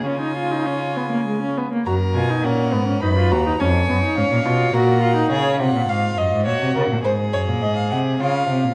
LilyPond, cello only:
\new Staff \with { instrumentName = "Cello" } { \clef bass \time 3/4 \key fis \major \tempo 4 = 103 cis2~ cis8 r8 | fis,8 b,8 ais,8 gis,8 fis,8 dis,8 | eis,8 fis,8 gis,16 ais,16 b,8 ais,4 | cis8 bis,16 ais,16 gis,8 fis,16 gis,16 ais,16 bis,16 cis16 ais,16 |
gis,8 fis,16 ais,16 gis,8 bis,8 cis8 bis,16 ais,16 | }